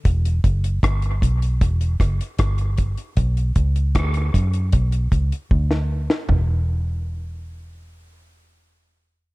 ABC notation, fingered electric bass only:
X:1
M:4/4
L:1/16
Q:1/4=77
K:Edor
V:1 name="Fingered electric bass" clef=bass
E,,,2 F,,,2 G,,,2 B,,,2 E,,,2 F,,, z G,,,3 z | B,,,2 C,,2 D,,2 F,,2 B,,,2 C,, z D,,3 z | E,,,16 |]